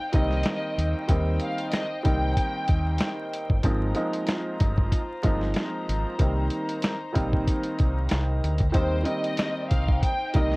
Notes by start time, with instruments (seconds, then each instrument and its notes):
Already playing: string section D#4 C5 G5, violin section G5
0.12 fingered electric bass C2, grand piano D#3 G3 A#3 C4 D#4, violin section D#5, kick, closed hi-hat
0.31 snare
0.43 snare, closed hi-hat
0.78 fingered electric bass D#2, closed hi-hat
1.08 fingered electric bass D#2, grand piano D#3 G3 A#3 C4 D#4, kick, closed hi-hat
1.40 violin section F5, closed hi-hat
1.58 closed hi-hat
1.72 violin section D#5, snare, closed hi-hat
2.03 fingered electric bass C2, grand piano D#3 G3 A#3 C4 D#4, violin section G5, kick, closed hi-hat
2.37 kick, closed hi-hat
2.68 fingered electric bass D#2, kick, closed hi-hat
2.98 snare, closed hi-hat
3.34 closed hi-hat
3.50 fingered electric bass G1, kick
3.63 fingered electric bass G#1, grand piano F3 G#3 A#3 C4 D#4, string section F4 C5 A#5, kick, closed hi-hat
3.95 grand piano F3 G#3 A#3 C4 D#4, closed hi-hat
4.14 closed hi-hat
4.27 snare, closed hi-hat
4.60 fingered electric bass G1, kick, closed hi-hat
4.78 kick
4.92 kick, closed hi-hat
5.23 fingered electric bass G1, grand piano F3 G#3 A#3 C4 D#4, kick, closed hi-hat
5.41 snare
5.54 snare, closed hi-hat
5.89 fingered electric bass G#1, closed hi-hat
6.18 fingered electric bass C2, grand piano D#3 G3 A#3 C4 D#4, string section D#4, kick, closed hi-hat
6.50 closed hi-hat
6.69 closed hi-hat
6.82 snare, closed hi-hat
7.13 fingered electric bass A#1, grand piano D#3 G3 A#3 C4 D#4, kick, closed hi-hat
7.33 kick
7.47 kick, closed hi-hat
7.63 closed hi-hat
7.79 fingered electric bass C2, kick, closed hi-hat
8.09 fingered electric bass C2, snare, closed hi-hat
8.44 fingered electric bass D2, closed hi-hat
8.58 kick, closed hi-hat
8.72 fingered electric bass D#2, grand piano D#3 G3 A#3 C4 D#4, string section D#4 C5 G5, violin section C5, kick, closed hi-hat
9.03 grand piano D#3 G3 A#3 C4 D#4, violin section D#5, closed hi-hat
9.24 closed hi-hat
9.37 snare, closed hi-hat
9.70 fingered electric bass C2, violin section F5, kick, closed hi-hat
9.89 kick
10.03 violin section G5, kick, closed hi-hat
10.34 fingered electric bass C2, grand piano D#3 G3 A#3 C4 D#4, violin section D#5, kick, closed hi-hat
10.52 snare